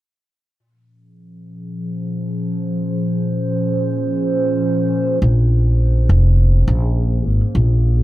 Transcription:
0.56 ambient pad A#2
0.67 ambient pad F3 C#4
0.92 ambient pad G#4
1.68 ambient pad C5
5.22 upright bass A#1
5.33 ambient pad A#3
6.09 upright bass F1
6.68 upright bass A#1
7.26 upright bass G#1
7.55 upright bass A#1

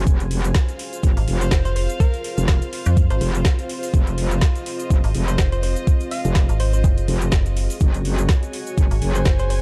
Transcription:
Already playing: string section G#5
0.07 wobble bass F1, ambient pad C4 F4 G#4, string section F4, kick, closed hi-hat, shaker
0.17 string section C5, closed hi-hat, shaker
0.31 open hi-hat
0.44 closed hi-hat, shaker
0.54 string section F5, kick, snare, closed hi-hat, shaker
0.69 closed hi-hat, shaker
0.79 open hi-hat
0.93 closed hi-hat, shaker
1.03 wobble bass F1, kick, closed hi-hat, shaker
1.17 fm bass G#1, open hi-hat, shaker
1.28 wobble bass F1, open hi-hat
1.41 synth pluck C5, closed hi-hat, shaker
1.51 fm bass F1, kick, snare, closed hi-hat, shaker
1.65 synth pluck C5, closed hi-hat, shaker
1.76 synth pluck C5, open hi-hat
1.90 closed hi-hat, shaker
2.00 synth pluck A#4, kick, closed hi-hat, shaker
2.14 closed hi-hat, shaker
2.24 open hi-hat
2.38 wobble bass F1, closed hi-hat, shaker
2.48 kick, snare, closed hi-hat, shaker
2.62 closed hi-hat, shaker
2.73 open hi-hat
2.86 fm bass F2, closed hi-hat, shaker
2.97 kick, closed hi-hat, shaker
3.10 fm bass G#1, synth pluck C5, closed hi-hat, shaker
3.21 wobble bass F1, synth pluck C5, open hi-hat
3.35 closed hi-hat, shaker
3.45 kick, snare, closed hi-hat, shaker
3.59 closed hi-hat, shaker
3.69 open hi-hat
3.82 string section D#5, open hi-hat, shaker
3.94 wobble bass F1, kick, closed hi-hat, shaker
4.07 closed hi-hat, shaker
4.18 open hi-hat
4.31 closed hi-hat, shaker
4.41 kick, snare, closed hi-hat, shaker
4.56 closed hi-hat, shaker
4.66 open hi-hat
4.79 closed hi-hat, shaker
4.90 wobble bass F1, kick, closed hi-hat, shaker
5.04 fm bass G#1, open hi-hat, shaker
5.15 wobble bass F1, open hi-hat
5.28 synth pluck C5, closed hi-hat, shaker
5.38 fm bass F1, kick, snare, closed hi-hat, shaker
5.52 synth pluck C5, closed hi-hat, shaker
5.63 synth pluck C5, open hi-hat
5.76 closed hi-hat, shaker
5.87 kick, closed hi-hat, shaker
6.00 closed hi-hat, shaker
6.11 synth pluck F5, open hi-hat
6.25 wobble bass F1, closed hi-hat, shaker
6.35 kick, snare, closed hi-hat, shaker
6.49 fm bass G#1, closed hi-hat, shaker
6.60 synth pluck C5, open hi-hat
6.73 synth pluck C5, closed hi-hat, shaker
6.84 fm bass F#1, kick, closed hi-hat, shaker
6.98 closed hi-hat, shaker
7.08 wobble bass F1, open hi-hat
7.21 closed hi-hat, shaker
7.32 fm bass F#1, kick, snare, closed hi-hat, shaker
7.46 closed hi-hat, shaker
7.57 open hi-hat
7.70 open hi-hat, shaker
7.80 wobble bass F#1, ambient pad C#4 F#4, string section F#4, kick, closed hi-hat, shaker
7.94 string section C#5, closed hi-hat, shaker
8.05 open hi-hat
8.18 closed hi-hat, shaker
8.29 kick, snare, closed hi-hat, shaker
8.36 string section G#5
8.43 closed hi-hat, shaker
8.53 open hi-hat
8.67 closed hi-hat, shaker
8.78 wobble bass F#1, kick, closed hi-hat, shaker
8.91 fm bass G#1, open hi-hat, shaker
9.02 wobble bass F#1, open hi-hat
9.15 synth pluck C5, closed hi-hat, shaker
9.25 fm bass F#1, kick, snare, closed hi-hat, shaker
9.39 synth pluck C5, closed hi-hat, shaker
9.50 synth pluck C5, open hi-hat

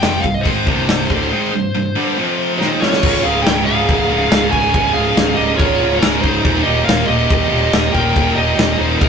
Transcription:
Already playing: lead electric guitar G5
0.00 fingered electric bass F1, distorted electric guitar F2 C3 F3, snare, open hi-hat
0.20 fingered electric bass C1, distorted electric guitar C2 G2, lead electric guitar F5, kick
0.34 lead electric guitar D#5
0.41 distorted electric guitar G#2 D#3 G#3, lead electric guitar C5
0.45 fingered electric bass G#1, kick, open hi-hat
0.66 fingered electric bass C1, distorted electric guitar C2 G2 C3, kick
0.88 snare, open hi-hat
1.09 fingered electric bass D1, distorted electric guitar D2 A2 D3, kick
1.30 distorted electric guitar G#2 D#3 G#3
1.52 distorted electric guitar C2 G2
1.75 distorted electric guitar C2 G2
1.96 distorted electric guitar G2 D3 G3
2.17 distorted electric guitar F2 C3 F3
2.58 distorted electric guitar D#2 A#2 D#3, lead electric guitar D#4 C5, snare
2.81 distorted electric guitar F2 C3 F3, lead electric guitar F4 C#5, snare
2.93 snare
3.03 fingered electric bass C#1, distorted electric guitar C#2 G#2 C#3, kick, crash
3.11 distorted electric guitar C#2 G#2
3.19 distorted electric guitar C#2 G#2
3.23 fingered electric bass C#1, distorted electric guitar C#2 G#2, lead electric guitar G#4 F5
3.35 distorted electric guitar C#2 G#2
3.42 distorted electric guitar C#2 G#2, lead electric guitar C#5 G5
3.46 fingered electric bass C#1, snare, crash
3.50 distorted electric guitar C#2 G#2
3.56 distorted electric guitar C#2 G#2
3.65 fingered electric bass C#1, distorted electric guitar C#2 G#2, lead electric guitar G#4 F5
3.72 distorted electric guitar C#2 G#2
3.81 distorted electric guitar C#2 G#2
3.87 fingered electric bass C#1, distorted electric guitar C#2 G#2, kick, crash
3.95 distorted electric guitar C#2 G#2
4.03 distorted electric guitar C#2 G#2
4.08 fingered electric bass C#1, distorted electric guitar C#2 G#2 C#3
4.18 distorted electric guitar C#2 G#2
4.26 distorted electric guitar C#2 G#2
4.30 fingered electric bass C#1, distorted electric guitar C#2 G#2 C#3, snare, crash
4.41 distorted electric guitar C#2 G#2
4.48 distorted electric guitar C#2 G#2, lead electric guitar C#5 G#5
4.53 fingered electric bass C#1, distorted electric guitar C#2, kick
4.57 distorted electric guitar G#2
4.64 distorted electric guitar C#2 G#2
4.73 fingered electric bass C#1, distorted electric guitar C#2 G#2 C#3, kick, crash
4.81 distorted electric guitar C#2 G#2
4.89 distorted electric guitar C#2 G#2
4.93 fingered electric bass C#1, distorted electric guitar C#2 G#2, lead electric guitar G#4 F5
5.04 distorted electric guitar C#2 G#2
5.11 distorted electric guitar C#2 G#2
5.15 fingered electric bass C#1, snare, crash
5.20 distorted electric guitar C#2 G#2
5.27 distorted electric guitar C#2 G#2
5.35 fingered electric bass C#1, distorted electric guitar C#2 G#2, lead electric guitar G4 D#5
5.43 distorted electric guitar C#2 G#2
5.50 distorted electric guitar C#2 G#2
5.56 fingered electric bass C#1, distorted electric guitar C#2 G#2, lead electric guitar F4 C#5, kick, crash
5.66 distorted electric guitar C#2 G#2
5.74 distorted electric guitar C#2 G#2
5.79 fingered electric bass C#1, distorted electric guitar C#2 G#2 C#3
5.90 distorted electric guitar C#2 G#2
5.97 distorted electric guitar C#2 G#2, lead electric guitar C#4 A#4
6.02 fingered electric bass C#1, distorted electric guitar C#2 G#2 C#3, snare, crash
6.13 distorted electric guitar C#2 G#2
6.20 fingered electric bass C#1, distorted electric guitar C#2 G#2, lead electric guitar D#4 C5, kick
6.29 distorted electric guitar C#2 G#2
6.36 distorted electric guitar C#2 G#2
6.45 fingered electric bass D#1, distorted electric guitar D#2 A#2 D#3, kick, crash
6.52 distorted electric guitar D#2 A#2
6.60 distorted electric guitar D#2 A#2, lead electric guitar G4 D#5
6.66 fingered electric bass D#1, distorted electric guitar D#2 A#2
6.76 distorted electric guitar D#2 A#2
6.83 distorted electric guitar D#2 A#2, lead electric guitar A#4 F5
6.87 fingered electric bass D#1, snare, crash
6.92 distorted electric guitar D#2 A#2
6.99 distorted electric guitar D#2 A#2
7.06 fingered electric bass D#1, distorted electric guitar D#2 A#2, lead electric guitar G4 D#5
7.14 distorted electric guitar D#2 A#2
7.22 distorted electric guitar D#2 A#2
7.30 fingered electric bass D#1, distorted electric guitar D#2 A#2, kick, crash
7.37 distorted electric guitar D#2 A#2
7.45 distorted electric guitar D#2 A#2
7.49 fingered electric bass D#1, distorted electric guitar D#2 D#3
7.54 distorted electric guitar A#2
7.60 distorted electric guitar D#2 A#2
7.69 distorted electric guitar D#2 A#2
7.73 fingered electric bass D#1, distorted electric guitar D#2 D#3, snare, crash
7.77 distorted electric guitar A#2
7.84 distorted electric guitar D#2 A#2
7.91 fingered electric bass D#1, distorted electric guitar D#2 A#2, lead electric guitar A#4 G5, kick
8.00 distorted electric guitar D#2 A#2
8.07 distorted electric guitar D#2 A#2
8.16 fingered electric bass D#1, distorted electric guitar D#2 A#2 D#3, kick, crash
8.24 distorted electric guitar D#2 A#2
8.32 fingered electric bass D#1, distorted electric guitar D#2 A#2, lead electric guitar G4 D#5
8.40 distorted electric guitar D#2 A#2
8.47 distorted electric guitar D#2 A#2
8.55 fingered electric bass D#1, distorted electric guitar D#2 A#2, crash
8.59 snare
8.63 distorted electric guitar D#2 A#2
8.70 distorted electric guitar D#2 A#2
8.78 fingered electric bass D#1, distorted electric guitar D#2 A#2, lead electric guitar D#4 C5
8.85 distorted electric guitar D#2 A#2
8.94 distorted electric guitar D#2 A#2
8.99 fingered electric bass D#1, distorted electric guitar A#2, lead electric guitar D#4 A#4, kick, crash
9.03 distorted electric guitar D#2

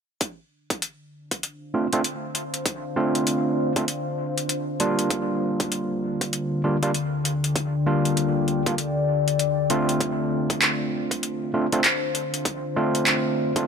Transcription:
0.21 ambient pad D4, kick, closed hi-hat
0.70 kick, closed hi-hat
0.82 closed hi-hat
0.99 ambient pad C5
1.09 ambient pad F5
1.31 kick, closed hi-hat
1.43 closed hi-hat
1.74 tine electric piano A3 C4 D4 F4
1.93 tine electric piano A3 C4 D4 F4, closed hi-hat
2.04 closed hi-hat
2.35 closed hi-hat
2.54 closed hi-hat
2.66 kick, closed hi-hat
2.96 tine electric piano A3 C4 D4 F4
3.15 closed hi-hat
3.27 closed hi-hat
3.76 tine electric piano A3 C4 D4 F4, kick, closed hi-hat
3.88 closed hi-hat
4.38 closed hi-hat
4.49 closed hi-hat
4.80 tine electric piano G3 A#3 D4 F4, closed hi-hat
4.99 closed hi-hat
5.10 ambient pad D3, kick, closed hi-hat
5.60 ambient pad G5, kick, closed hi-hat
5.72 closed hi-hat
6.11 ambient pad D5
6.21 kick, closed hi-hat
6.33 closed hi-hat
6.64 tine electric piano G3 A#3 D4 F4
6.83 tine electric piano G3 A#3 D4 F4, closed hi-hat
6.94 closed hi-hat
7.25 closed hi-hat
7.44 closed hi-hat
7.56 kick, closed hi-hat
7.87 tine electric piano G3 A#3 D4 F4
8.05 closed hi-hat
8.17 closed hi-hat
8.48 closed hi-hat
8.66 tine electric piano G3 A#3 D4 F4, kick, closed hi-hat
8.78 closed hi-hat
9.28 closed hi-hat
9.39 closed hi-hat
9.70 tine electric piano A3 C4 D4 F4, closed hi-hat
9.89 closed hi-hat
10.00 ambient pad D4, kick, closed hi-hat
10.24 ambient pad C5
10.46 ambient pad F5, kick, closed hi-hat
10.62 clap, closed hi-hat
11.11 kick, closed hi-hat
11.23 closed hi-hat
11.54 tine electric piano A3 C4 D4 F4
11.72 tine electric piano A3 C4 D4 F4, closed hi-hat
11.84 clap, closed hi-hat
12.15 closed hi-hat
12.34 closed hi-hat
12.45 kick, closed hi-hat
12.76 tine electric piano A3 C4 D4 F4
12.95 closed hi-hat
13.07 clap, closed hi-hat
13.56 tine electric piano A3 C4 D4 F4, kick, closed hi-hat

